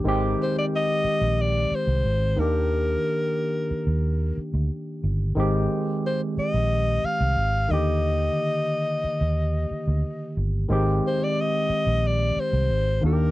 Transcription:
X:1
M:4/4
L:1/16
Q:1/4=90
K:Ablyd
V:1 name="Alto saxophone"
z2 c d e4 d2 c4 B2- | B8- B2 z6 | z4 c2 e4 f4 e2- | e12- e2 z2 |
z2 c d e4 d2 c4 B2 |]
V:2 name="Tine electric piano"
[E,A,CG]12- [E,A,CG]2 [E,B,DG]2- | [E,B,DG]12- [E,B,DG]2 z2 | [E,A,CG]12- [E,A,CG]2 [D,E,B,G]2- | [D,E,B,G]12- [D,E,B,G]2 z2 |
[E,A,CG]12- [E,A,CG]2 [E,B,D_G=G]2 |]
V:3 name="Fingered electric bass" clef=bass
A,,,2 z4 z B,,,3 z C,, A,,,2 E,,2- | E,,2 z4 z E,,3 z D,, z2 G,,,2 | A,,,2 z4 z B,,,3 z C,, A,,,2 E,,2- | E,,2 z4 z E,,3 z D,, z2 G,,,2 |
A,,,2 z4 z B,,,3 z C,, A,,,2 E,,2 |]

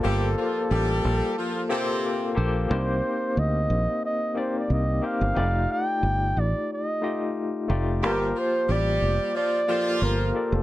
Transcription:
X:1
M:4/4
L:1/16
Q:"Swing 16ths" 1/4=90
K:Gm
V:1 name="Flugelhorn"
A12- A2 z2 | c4 e4 e2 c d e2 f2- | f2 g4 d2 e4 z4 | B2 c2 d4 d4 B3 A |]
V:2 name="Tine electric piano"
[B,FGAc]6 z4 [B,FGAc]4 [B,FGAc]2 | [B,CEGc]6 z4 [B,CEGd]4 [B,CEGc]2 | [A,EFGd]6 z4 [A,EFGe]4 [A,EFGd]2 | [B,FG=Bca]6 z4 [_B,FGAc]4 [B,FGAd]2 |]
V:3 name="Horn section"
[G,G]2 [F,F]2 [G,G]4 [F,F]2 [C,C]4 z2 | z16 | z16 | [G,G]2 [F,F]2 [G,G]4 [F,F]2 [F,F]4 z2 |]
V:4 name="Fingered electric bass" clef=bass
G,,,2 z2 A,,,2 B,,, z6 z B,,,2 | C,,2 z2 D,,2 B,,, z4 z C,,2 z G,,, | F,,,2 z2 G,,,2 A,,, z6 z F,,,2 | G,,,2 z2 A,,,2 F,,, z4 z G,,,2 z F,,, |]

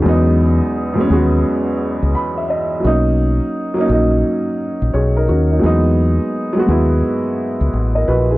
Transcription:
X:1
M:4/4
L:1/16
Q:"Swing 16ths" 1/4=86
K:Elyd
V:1 name="Upright piano"
[CF] z8 z3 b e d2 | z12 [Gc] [DA] [CF] [A,D]- | [A,D] z12 [Ad] [FB] [DG] |]
V:2 name="Upright piano"
[E,,F,G,B,D]4- [E,,F,G,B,D] [E,,F,G,B,C] [F,G,B,F]6- [F,G,B,F] z3 | [F,A,CD]4- [F,A,CD] [F,A,CD] [F,A,CD]6- [F,A,CD] z3 | [F,G,B,D]4- [F,G,B,D] [F,G,B,F] [F,G,B,E]6- [F,G,B,E] z3 |]
V:3 name="Fingered electric bass" clef=bass
E,,3 z3 D,,2 z3 C,, z4 | B,,,3 z3 A,,,2 z3 A,,, B,,,2 D,,2 | E,,3 z3 D,,2 z3 C,, =A,,,2 ^A,,,2 |]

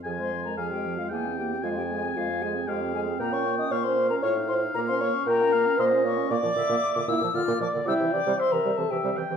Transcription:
X:1
M:3/4
L:1/16
Q:1/4=115
K:Fm
V:1 name="Flute"
a c'2 b a g2 f a2 g2 | f g a2 f2 a2 g2 a2 | b d'2 e' d' c'2 b d'2 c'2 | b c' d'2 b4 c'2 d'2 |
[K:Bblyd] d'6 e'2 f'2 d'2 | e'2 d'2 c' b2 a g2 z2 |]
V:2 name="Oboe"
a4 f4 g4 | a8 f4 | g4 f4 f4- | f4 g2 f2 e4 |
[K:Bblyd] d2 e4 z2 d4 | g4 e4 e2 g2 |]
V:3 name="French horn"
A c2 B A G2 F A2 G2 | F G A2 F2 A2 G2 A2 | B d2 e d c2 B d2 c2 | B c d2 B4 c2 d2 |
[K:Bblyd] d6 E2 F2 d2 | E2 d2 c B2 A G2 z2 |]
V:4 name="Clarinet"
F, A, F, A, F, A, F, A, B, C B, C | A, C A, C A, C A, C A, C A, C | B, D B, D B, D B, D F E F E | B, D B, D B, D B, D B, D B, D |
[K:Bblyd] B, F, D, B, z D, B, F, D, B, F, D, | G, E, E, G, z E, G, E, E, G, E, E, |]
V:5 name="Bassoon" clef=bass
F,,4 F,,4 =E,,4 | F,,4 F,,4 F,,4 | B,,4 B,,4 =A,,4 | B,,4 B,,4 B,,4 |
[K:Bblyd] B,, B,, B,, B,, z B,, B,, B,, B,, B,, B,, B,, | C, C, C, C, z C, C, C, C, C, C, C, |]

